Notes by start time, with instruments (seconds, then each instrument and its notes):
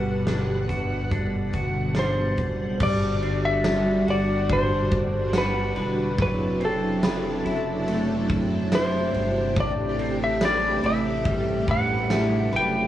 Already playing: analog synth bass G1, string machine B2 D3 G3 F#5, clean electric guitar G3 D4 F#4, electric slide guitar B4
0.27 clean electric guitar D4, snare, closed hi-hat
0.69 analog synth bass G1, clean electric guitar F#4, kick, closed hi-hat
1.11 clean electric guitar D4, kick, closed hi-hat
1.53 analog synth bass G1, clean electric guitar F#4, kick, closed hi-hat
1.95 clean electric guitar D4, snare, closed hi-hat
1.99 electric slide guitar C5
2.37 analog synth bass F#1, kick, closed hi-hat
2.80 analog synth bass G1, string machine D3 G3 D4 F#4, clean electric guitar G3, electric slide guitar D5, kick, crash
3.22 clean electric guitar D4, ride
3.45 electric slide guitar E5
3.64 snare, ride, tambourine
4.08 analog synth bass G1, clean electric guitar F#4, electric slide guitar D5, ride
4.49 clean electric guitar D4, electric slide guitar C5, kick, ride
4.91 kick, ride
5.33 clean electric guitar F#4, snare, ride, tambourine
5.38 electric slide guitar B4
5.76 analog synth bass E1, clean electric guitar B4, ride
6.18 analog synth bass F#1, string machine C3 F#3 E4, clean electric guitar F#3, kick, ride
6.22 electric slide guitar B4
6.60 clean electric guitar C4, ride
6.65 electric slide guitar A4
7.03 clean electric guitar B4, snare, ride, tambourine
7.45 analog synth bass F#1, clean electric guitar E4, ride
7.88 clean electric guitar A3, ride
8.29 kick, ride
8.72 clean electric guitar E4, electric slide guitar C5, snare, ride, tambourine
9.14 analog synth bass G1, ride
9.56 analog synth bass A1, clean electric guitar A2, string machine A3 G4, kick, ride
9.60 electric slide guitar D5
9.99 clean electric guitar C4, ride
10.24 electric slide guitar E5
10.41 clean electric guitar B4, snare, ride, tambourine
10.45 electric slide guitar D5
10.84 analog synth bass A1, clean electric guitar E4, electric slide guitar E5, ride
11.25 clean electric guitar G3, kick, ride
11.68 clean electric guitar B4, electric slide guitar F#5, kick, ride
12.10 clean electric guitar E4, snare, ride, tambourine
12.52 analog synth bass F#1, clean electric guitar B4, electric slide guitar G5, ride